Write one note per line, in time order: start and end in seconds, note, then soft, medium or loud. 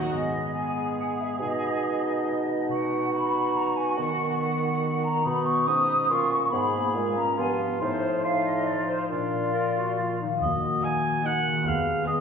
0.00 0.11 F#3 soft
0.00 0.53 D#4 soft
0.00 0.11 F#4 soft
0.00 0.11 A#4 soft
0.00 0.11 F#5 soft
0.10 1.42 G#2 soft
0.10 1.41 G#3 soft
0.10 1.36 B3 soft
0.10 2.65 G#4 soft
0.10 0.52 D#5 soft
0.32 0.74 B4 soft
0.54 1.83 D#4 soft
0.54 0.97 G#5 soft
0.76 1.18 B4 soft
0.99 2.26 G#3 soft
0.99 1.05 F#5 medium
1.19 1.61 B4 soft
1.19 1.26 E5 soft
1.40 4.00 B2 soft
1.40 2.67 B2 soft
1.40 3.93 D#4 soft
1.40 2.68 D#5 medium
1.63 2.04 B4 soft
1.84 3.11 D#4 soft
2.05 2.46 B4 soft
2.27 2.71 G#3 soft
2.47 2.89 B4 soft
2.68 3.99 B2 soft
2.68 5.21 F#4 soft
2.68 3.12 F#5 medium
2.90 3.32 B4 soft
3.13 4.81 D#4 soft
3.13 3.55 B5 medium
3.33 3.76 B4 soft
3.54 6.08 F#3 soft
3.54 3.77 A#5 medium
3.77 4.39 B4 soft
3.77 3.98 G#5 medium
3.97 5.27 D#3 soft
3.97 5.25 D#3 soft
3.97 5.22 B3 soft
3.97 5.02 F#5 medium
4.20 4.61 F#4 soft
4.40 5.45 B4 soft
4.62 5.02 F#4 soft
4.82 5.66 D#4 soft
5.03 6.54 F#4 soft
5.03 5.25 A#5 medium
5.24 6.54 B2 soft
5.24 5.65 B2 soft
5.24 5.68 B3 soft
5.24 6.06 D#4 soft
5.24 5.46 B5 medium
5.46 5.87 B4 soft
5.46 5.67 C#6 medium
5.67 6.09 G#2 soft
5.67 6.50 C#4 soft
5.67 6.54 D#4 soft
5.67 6.10 D#6 medium
5.88 6.30 B4 soft
6.08 6.51 A#2 soft
6.08 6.54 F#3 soft
6.08 6.34 F4 soft
6.08 6.51 C#6 medium
6.31 6.51 F#4 soft
6.31 6.73 B4 soft
6.50 6.96 G#2 soft
6.50 7.82 G#2 soft
6.50 6.75 B3 soft
6.50 7.20 G#4 soft
6.50 6.88 B5 medium
6.74 6.98 A#3 soft
6.74 7.15 B4 soft
6.95 7.37 A#2 soft
6.95 7.18 G#3 soft
6.95 8.23 F4 soft
7.15 7.40 C#4 soft
7.15 7.58 B4 soft
7.15 7.37 A#5 medium
7.37 7.79 G2 soft
7.37 8.66 F3 soft
7.37 7.79 B3 soft
7.37 7.79 F4 soft
7.37 7.59 G#5 medium
7.60 7.82 B4 soft
7.79 8.93 A2 soft
7.79 9.12 A2 soft
7.79 8.11 D#4 soft
7.79 8.20 F4 soft
7.79 8.21 C5 medium
8.03 8.44 D#5 soft
8.23 9.13 D#4 soft
8.23 9.09 F4 soft
8.23 9.54 F4 soft
8.23 8.45 F5 medium
8.45 8.66 D#5 medium
8.45 8.88 D#5 soft
8.66 9.97 F3 soft
8.66 8.88 D5 medium
8.87 9.09 C5 soft
8.87 9.13 D#5 soft
9.08 10.18 A#2 soft
9.08 10.44 A#2 soft
9.08 10.19 F4 soft
9.08 10.17 D5 soft
9.12 9.51 D4 soft
9.33 9.76 F5 soft
9.54 10.44 F4 soft
9.54 9.75 A#4 soft
9.77 10.01 F#4 soft
9.77 10.19 F5 soft
9.99 10.44 F3 soft
9.99 10.20 F4 soft
10.20 11.46 D#3 soft
10.20 10.30 D#4 soft
10.20 10.44 F5 soft
10.28 11.61 F#3 soft
10.32 11.63 F#4 soft
10.37 12.21 D#5 soft
10.42 10.75 D#2 soft
10.42 11.21 A#3 soft
10.42 11.21 F#4 soft
10.42 10.86 D#5 soft
10.82 11.14 D#4 soft
10.82 11.14 F#4 soft
10.82 11.15 A#4 soft
10.82 11.27 G#5 medium
11.24 11.65 A#3 soft
11.24 11.55 D#4 soft
11.24 11.65 F#4 soft
11.24 11.56 F#4 soft
11.24 11.56 A#4 soft
11.24 11.67 F#5 soft
11.48 12.21 D#3 soft
11.52 12.21 G#3 soft
11.57 12.21 F4 soft
11.61 12.21 B4 soft
11.66 11.98 D#2 soft
11.66 12.06 B3 soft
11.66 12.06 G#4 soft
11.66 12.07 F5 medium
12.06 12.21 B3 soft
12.06 12.21 F4 soft
12.06 12.21 G#4 soft
12.06 12.21 D#5 medium